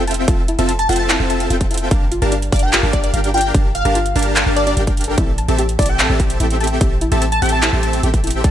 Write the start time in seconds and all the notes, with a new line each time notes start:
Already playing: F1 C4 F4 A4 E5 G5
0.07 A5, closed hi-hat
0.11 closed hi-hat
0.14 closed hi-hat
0.28 F1 C4 F4 A4 A5, kick, closed hi-hat
0.48 E4, closed hi-hat
0.59 F1 C4 F4 A4 E5 A5, closed hi-hat
0.69 A5, closed hi-hat
0.79 A5, closed hi-hat
0.89 F1 C4 F4 A4 E5 G5 A5, closed hi-hat, open hi-hat
0.96 A5, closed hi-hat
1.10 E4 A5, clap, closed hi-hat
1.20 F1 C4 F4 A4 E5 A5
1.30 A5, closed hi-hat
1.40 closed hi-hat
1.50 F1 C4 F4 A4 E5 G5, closed hi-hat
1.61 kick, closed hi-hat
1.71 E4, closed hi-hat
1.74 closed hi-hat
1.78 closed hi-hat
1.91 G1 D4 G4 F5, kick, closed hi-hat
2.12 F4, closed hi-hat
2.22 G1 D4 G4 A#4 F5 A5, closed hi-hat
2.32 D4, closed hi-hat
2.42 closed hi-hat
2.52 G1 D4 G4 A#4 D5 F5 A5, kick, closed hi-hat, open hi-hat
2.59 G5, closed hi-hat
2.73 F4, clap, closed hi-hat
2.83 G1 D4 G4 A#4 F5 A5
2.93 D4 D5, kick, closed hi-hat
3.04 D5, closed hi-hat
3.14 G1 D4 G4 A#4 F5 G5, closed hi-hat
3.24 closed hi-hat
3.34 F4 G5, closed hi-hat
3.38 closed hi-hat
3.41 closed hi-hat
3.54 G1 D4 G4 A#4 F5 A5, kick, closed hi-hat
3.75 F5, closed hi-hat
3.85 G1 D4 G4 A#4 F5 A5, closed hi-hat
3.95 F4, closed hi-hat
4.06 closed hi-hat
4.16 G1 D4 G4 A#4 F5 A5, closed hi-hat, open hi-hat
4.22 closed hi-hat
4.36 F5, clap, closed hi-hat
4.46 G1 D4 G4 A#4 F5 A5
4.56 D5, closed hi-hat
4.67 D4 D5, closed hi-hat
4.77 G1 D4 G4 A#4 F5 G5, closed hi-hat
4.87 D4, kick, closed hi-hat
4.97 closed hi-hat
5.01 closed hi-hat
5.04 A4, closed hi-hat
5.18 A1 E4 G4 A4 E5, kick, closed hi-hat
5.38 A5, closed hi-hat
5.48 A1 C4 G4 A4 E5 A5, closed hi-hat
5.58 G4, closed hi-hat
5.69 closed hi-hat
5.79 A1 C4 E4 G4 A4 D5 E5 A5, kick, closed hi-hat, open hi-hat
5.86 G5, closed hi-hat
5.99 A5, clap, closed hi-hat
6.10 A1 C4 G4 A4 E5 A5
6.20 G4, kick, closed hi-hat
6.30 closed hi-hat
6.40 A1 C4 E4 G4 A4 E5 G5, closed hi-hat
6.50 closed hi-hat
6.61 A5, closed hi-hat
6.64 closed hi-hat
6.67 closed hi-hat
6.81 A1 C4 G4 A4 E5, kick, closed hi-hat
7.01 E4, closed hi-hat
7.12 A1 C4 G4 A4 E5 A5, closed hi-hat
7.22 A5, closed hi-hat
7.32 A5, closed hi-hat
7.42 A1 C4 G4 A4 E5 G5 A5, closed hi-hat, open hi-hat
7.49 A5, closed hi-hat
7.63 E4 A5, clap, closed hi-hat
7.73 A1 C4 G4 A4 E5 A5
7.83 A5, closed hi-hat
7.93 closed hi-hat
8.03 A1 C4 G4 A4 E5 G5, closed hi-hat
8.14 kick, closed hi-hat
8.24 E4, closed hi-hat
8.27 closed hi-hat
8.31 closed hi-hat
8.44 D2 C4 F4 D5 A5, kick, closed hi-hat